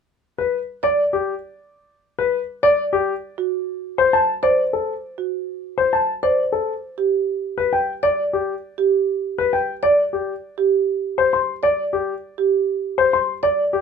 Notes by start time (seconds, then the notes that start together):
0.38 B4
0.83 D5
1.13 G4
2.19 B4
2.63 D5
2.93 G4
3.38 F#4
3.98 C5
4.13 A5
4.43 C5 D5
4.73 A4
5.18 F#4
5.78 C5
5.93 A5
6.23 C5 D5
6.52 A4
6.98 G4
7.58 B4
7.73 G5
8.03 D5
8.33 G4
8.78 G4
9.38 B4
9.53 G5
9.83 D5
10.13 G4
10.58 G4
11.18 C5
11.33 C6
11.63 D5
11.93 G4
12.38 G4
12.98 C5
13.13 C6
13.43 D5
13.73 G4